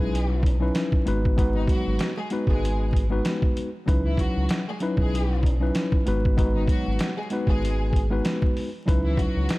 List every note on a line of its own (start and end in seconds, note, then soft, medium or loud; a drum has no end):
0.00 0.71 B1 medium
0.00 0.54 F#3 loud
0.00 0.41 G#3 medium
0.00 0.54 C#4 medium
0.00 0.54 D#4 medium
0.00 0.55 E4 medium
0.00 0.41 G#4 medium
0.00 0.55 B4 loud
0.15 closed hi-hat medium
0.43 kick medium
0.43 closed hi-hat medium
0.60 1.03 F#3 medium
0.60 1.03 C#4 medium
0.60 1.03 D#4 medium
0.60 1.04 E4 medium
0.60 1.04 B4 medium
0.75 snare loud
0.75 closed hi-hat medium
0.92 kick loud
1.06 1.71 G#1 loud
1.06 1.35 G#3 medium
1.06 1.35 B3 medium
1.06 1.36 D#4 medium
1.06 1.36 F#4 medium
1.06 1.36 B4 loud
1.06 closed hi-hat medium
1.25 kick medium
1.37 2.10 G#3 medium
1.37 2.10 B3 medium
1.37 2.11 D#4 medium
1.37 2.11 F#4 medium
1.37 2.11 B4 medium
1.37 kick loud
1.37 closed hi-hat medium
1.55 1.66 D#3 medium
1.55 1.66 D#4 medium
1.67 1.94 F#3 medium
1.67 1.94 F#4 medium
1.67 kick medium
1.67 closed hi-hat medium
1.87 1.98 G#1 medium
1.99 snare loud
1.99 closed hi-hat loud
2.17 2.29 G#3 medium
2.17 2.29 G#4 medium
2.30 3.04 G#3 medium
2.30 3.04 B3 medium
2.30 3.05 D#4 medium
2.30 3.05 F#4 medium
2.30 3.05 B4 loud
2.30 closed hi-hat medium
2.47 3.21 G#1 medium
2.47 2.92 G#3 medium
2.47 2.92 G#4 medium
2.47 kick medium
2.65 closed hi-hat medium
2.93 kick medium
2.93 closed hi-hat medium
3.10 3.68 G#3 medium
3.10 3.68 B3 medium
3.10 3.68 D#4 medium
3.10 3.69 F#4 medium
3.10 3.69 B4 loud
3.25 snare loud
3.25 closed hi-hat medium
3.42 kick loud
3.57 closed hi-hat medium
3.86 4.27 C#2 loud
3.86 4.60 F#3 medium
3.86 4.60 C#4 medium
3.86 4.60 D#4 medium
3.86 4.61 E4 medium
3.86 4.61 B4 medium
3.86 kick loud
3.86 closed hi-hat medium
4.05 4.16 E3 medium
4.05 4.16 E4 medium
4.17 4.44 F#3 medium
4.17 4.44 F#4 medium
4.17 kick medium
4.17 closed hi-hat medium
4.37 4.48 C#2 medium
4.49 snare loud
4.49 closed hi-hat loud
4.68 4.79 G#3 medium
4.68 4.79 G#4 medium
4.80 5.54 F#3 loud
4.80 5.54 C#4 medium
4.80 5.54 D#4 medium
4.80 5.55 E4 medium
4.80 5.55 B4 loud
4.80 closed hi-hat medium
4.97 5.71 B1 medium
4.97 5.41 G#3 medium
4.97 5.41 G#4 medium
4.97 kick medium
5.15 closed hi-hat medium
5.43 kick medium
5.43 closed hi-hat medium
5.60 6.03 F#3 medium
5.60 6.03 C#4 medium
5.60 6.03 D#4 medium
5.60 6.04 E4 medium
5.60 6.04 B4 medium
5.75 snare loud
5.75 closed hi-hat medium
5.92 kick medium
6.06 6.71 G#1 medium
6.06 6.35 G#3 medium
6.06 6.36 B3 medium
6.06 6.36 D#4 medium
6.06 6.36 F#4 medium
6.06 6.36 B4 loud
6.06 closed hi-hat medium
6.25 kick medium
6.37 7.10 G#3 medium
6.37 7.10 B3 medium
6.37 7.11 D#4 medium
6.37 7.11 F#4 medium
6.37 7.11 B4 medium
6.37 kick loud
6.37 closed hi-hat medium
6.55 6.66 D#3 medium
6.55 6.67 D#4 medium
6.67 6.94 F#3 medium
6.67 6.94 F#4 medium
6.67 kick medium
6.67 closed hi-hat medium
6.87 6.98 G#1 medium
6.99 snare loud
6.99 closed hi-hat loud
7.17 7.29 G#3 medium
7.17 7.29 G#4 medium
7.30 8.04 G#3 medium
7.30 8.04 B3 medium
7.30 8.05 D#4 medium
7.30 8.05 F#4 medium
7.30 8.05 B4 medium
7.30 closed hi-hat medium
7.47 8.21 G#1 medium
7.47 7.91 G#3 medium
7.47 7.91 G#4 medium
7.47 kick medium
7.65 closed hi-hat medium
7.93 kick medium
7.93 closed hi-hat medium
8.10 8.68 G#3 medium
8.10 8.68 B3 medium
8.10 8.68 D#4 medium
8.10 8.69 F#4 medium
8.10 8.69 B4 loud
8.25 snare loud
8.25 closed hi-hat medium
8.42 kick medium
8.57 open hi-hat medium
8.86 9.27 C#2 loud
8.86 9.59 F#3 medium
8.86 9.59 C#4 medium
8.86 9.59 D#4 medium
8.86 9.59 E4 medium
8.86 9.59 B4 loud
8.86 kick loud
8.86 closed hi-hat medium
9.05 9.16 E3 medium
9.05 9.16 E4 medium
9.17 9.44 F#3 medium
9.17 9.44 F#4 medium
9.17 kick loud
9.17 closed hi-hat medium
9.37 9.48 C#2 medium
9.49 snare loud
9.49 closed hi-hat loud